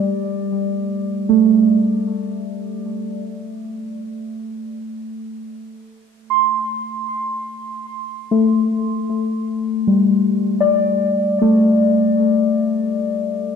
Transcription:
0, 0, Header, 1, 2, 480
1, 0, Start_track
1, 0, Tempo, 500000
1, 13014, End_track
2, 0, Start_track
2, 0, Title_t, "Synth keys"
2, 0, Program_c, 0, 88
2, 0, Control_c, 0, 64, 127
2, 0, Note_on_c, 0, 55, 60
2, 0, Note_on_c, 0, 57, 55
2, 0, Note_on_c, 0, 74, 64
2, 1239, Note_off_c, 0, 57, 0
2, 1239, Note_on_c, 0, 57, 64
2, 1439, Note_off_c, 0, 55, 0
2, 1649, Note_off_c, 0, 74, 0
2, 3080, Control_c, 0, 64, 0
2, 3270, Control_c, 0, 64, 127
2, 4158, Note_off_c, 0, 57, 0
2, 6048, Note_on_c, 0, 84, 50
2, 7980, Note_on_c, 0, 57, 67
2, 8965, Note_off_c, 0, 84, 0
2, 9037, Control_c, 0, 64, 0
2, 9218, Control_c, 0, 64, 127
2, 9478, Note_on_c, 0, 55, 59
2, 9670, Note_off_c, 0, 57, 0
2, 10181, Note_on_c, 0, 74, 81
2, 10959, Note_on_c, 0, 57, 74
2, 11164, Note_off_c, 0, 55, 0
2, 13014, Note_off_c, 0, 57, 0
2, 13014, Note_off_c, 0, 74, 0
2, 13014, End_track
0, 0, End_of_file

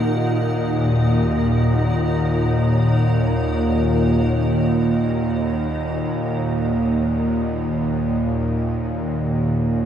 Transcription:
0, 0, Header, 1, 4, 480
1, 0, Start_track
1, 0, Tempo, 500000
1, 9461, End_track
2, 0, Start_track
2, 0, Title_t, "Ambient pad"
2, 0, Program_c, 0, 92
2, 0, Note_on_c, 0, 63, 66
2, 0, Note_on_c, 0, 70, 61
2, 0, Note_on_c, 0, 75, 64
2, 0, Note_on_c, 0, 78, 78
2, 698, Note_on_c, 0, 73, 63
2, 1044, Note_off_c, 0, 75, 0
2, 9461, Note_off_c, 0, 63, 0
2, 9461, Note_off_c, 0, 70, 0
2, 9461, Note_off_c, 0, 73, 0
2, 9461, Note_off_c, 0, 78, 0
2, 9461, End_track
3, 0, Start_track
3, 0, Title_t, "Synth texture"
3, 0, Program_c, 1, 99
3, 0, Note_on_c, 1, 63, 75
3, 0, Note_on_c, 1, 75, 73
3, 9461, Note_off_c, 1, 63, 0
3, 9461, Note_off_c, 1, 75, 0
3, 9461, End_track
4, 0, Start_track
4, 0, Title_t, "Synth drone"
4, 0, Program_c, 2, 95
4, 0, Note_on_c, 2, 39, 67
4, 0, Note_on_c, 2, 46, 66
4, 9461, Note_off_c, 2, 39, 0
4, 9461, Note_off_c, 2, 46, 0
4, 9461, End_track
0, 0, End_of_file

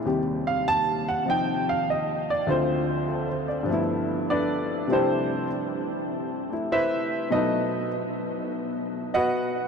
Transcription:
0, 0, Header, 1, 2, 480
1, 0, Start_track
1, 0, Tempo, 604230
1, 39, Time_signature, 4, 2, 24, 8
1, 7688, End_track
2, 0, Start_track
2, 0, Title_t, "Upright piano"
2, 0, Program_c, 0, 0
2, 0, Note_on_c, 0, 64, 51
2, 41, Note_on_c, 0, 39, 54
2, 45, Note_on_c, 0, 48, 50
2, 47, Note_on_c, 0, 55, 51
2, 53, Note_on_c, 0, 67, 62
2, 138, Note_off_c, 0, 64, 0
2, 374, Note_on_c, 0, 77, 87
2, 517, Note_off_c, 0, 77, 0
2, 539, Note_on_c, 0, 81, 107
2, 850, Note_off_c, 0, 81, 0
2, 862, Note_on_c, 0, 78, 88
2, 980, Note_off_c, 0, 48, 0
2, 992, Note_on_c, 0, 48, 46
2, 1001, Note_off_c, 0, 78, 0
2, 1001, Note_on_c, 0, 53, 43
2, 1017, Note_on_c, 0, 63, 51
2, 1031, Note_on_c, 0, 79, 88
2, 1336, Note_off_c, 0, 79, 0
2, 1344, Note_on_c, 0, 77, 86
2, 1482, Note_off_c, 0, 77, 0
2, 1510, Note_on_c, 0, 75, 73
2, 1816, Note_off_c, 0, 75, 0
2, 1830, Note_on_c, 0, 74, 82
2, 1956, Note_off_c, 0, 48, 0
2, 1960, Note_off_c, 0, 39, 0
2, 1960, Note_off_c, 0, 53, 0
2, 1960, Note_on_c, 0, 38, 63
2, 1963, Note_off_c, 0, 55, 0
2, 1965, Note_off_c, 0, 74, 0
2, 1966, Note_off_c, 0, 67, 0
2, 1967, Note_on_c, 0, 50, 59
2, 1968, Note_off_c, 0, 63, 0
2, 1969, Note_on_c, 0, 60, 57
2, 1972, Note_on_c, 0, 65, 65
2, 1989, Note_on_c, 0, 72, 79
2, 2446, Note_on_c, 0, 69, 51
2, 2602, Note_off_c, 0, 72, 0
2, 2614, Note_on_c, 0, 72, 55
2, 2750, Note_off_c, 0, 69, 0
2, 2766, Note_on_c, 0, 74, 52
2, 2858, Note_off_c, 0, 72, 0
2, 2883, Note_on_c, 0, 43, 65
2, 2906, Note_on_c, 0, 53, 58
2, 2920, Note_off_c, 0, 38, 0
2, 2923, Note_off_c, 0, 50, 0
2, 2924, Note_off_c, 0, 60, 0
2, 2926, Note_off_c, 0, 65, 0
2, 2929, Note_on_c, 0, 57, 61
2, 2949, Note_on_c, 0, 59, 57
2, 2967, Note_on_c, 0, 64, 70
2, 3014, Note_off_c, 0, 74, 0
2, 3417, Note_on_c, 0, 74, 85
2, 3423, Note_on_c, 0, 62, 70
2, 3424, Note_on_c, 0, 69, 72
2, 3424, Note_on_c, 0, 71, 69
2, 3856, Note_off_c, 0, 74, 0
2, 3860, Note_off_c, 0, 62, 0
2, 3860, Note_off_c, 0, 69, 0
2, 3860, Note_off_c, 0, 71, 0
2, 3861, Note_off_c, 0, 43, 0
2, 3868, Note_on_c, 0, 48, 58
2, 3872, Note_off_c, 0, 53, 0
2, 3874, Note_off_c, 0, 57, 0
2, 3879, Note_on_c, 0, 55, 54
2, 3886, Note_on_c, 0, 57, 53
2, 3893, Note_on_c, 0, 60, 56
2, 3894, Note_off_c, 0, 59, 0
2, 3894, Note_off_c, 0, 64, 0
2, 3901, Note_on_c, 0, 62, 55
2, 3905, Note_off_c, 0, 60, 0
2, 3906, Note_on_c, 0, 64, 64
2, 3911, Note_on_c, 0, 69, 66
2, 3915, Note_on_c, 0, 67, 69
2, 3916, Note_on_c, 0, 72, 82
2, 3917, Note_on_c, 0, 60, 68
2, 4343, Note_off_c, 0, 69, 0
2, 4345, Note_off_c, 0, 67, 0
2, 4346, Note_off_c, 0, 60, 0
2, 4346, Note_off_c, 0, 72, 0
2, 5153, Note_off_c, 0, 57, 0
2, 5165, Note_on_c, 0, 57, 48
2, 5177, Note_off_c, 0, 64, 0
2, 5189, Note_on_c, 0, 64, 55
2, 5326, Note_off_c, 0, 64, 0
2, 5338, Note_on_c, 0, 64, 72
2, 5340, Note_on_c, 0, 72, 75
2, 5341, Note_on_c, 0, 76, 93
2, 5342, Note_on_c, 0, 71, 73
2, 5777, Note_off_c, 0, 64, 0
2, 5778, Note_off_c, 0, 72, 0
2, 5778, Note_off_c, 0, 76, 0
2, 5779, Note_off_c, 0, 71, 0
2, 5793, Note_off_c, 0, 57, 0
2, 5794, Note_off_c, 0, 48, 0
2, 5799, Note_off_c, 0, 55, 0
2, 5799, Note_on_c, 0, 47, 62
2, 5804, Note_on_c, 0, 54, 57
2, 5805, Note_on_c, 0, 57, 55
2, 5810, Note_off_c, 0, 62, 0
2, 5812, Note_on_c, 0, 63, 69
2, 5816, Note_on_c, 0, 75, 82
2, 5824, Note_on_c, 0, 69, 65
2, 5824, Note_on_c, 0, 71, 63
2, 6256, Note_off_c, 0, 75, 0
2, 6260, Note_off_c, 0, 69, 0
2, 6260, Note_off_c, 0, 71, 0
2, 7261, Note_on_c, 0, 75, 82
2, 7266, Note_on_c, 0, 78, 98
2, 7271, Note_on_c, 0, 66, 76
2, 7272, Note_on_c, 0, 71, 80
2, 7688, Note_off_c, 0, 47, 0
2, 7688, Note_off_c, 0, 54, 0
2, 7688, Note_off_c, 0, 57, 0
2, 7688, Note_off_c, 0, 63, 0
2, 7688, Note_off_c, 0, 66, 0
2, 7688, Note_off_c, 0, 71, 0
2, 7688, Note_off_c, 0, 75, 0
2, 7688, Note_off_c, 0, 78, 0
2, 7688, End_track
0, 0, End_of_file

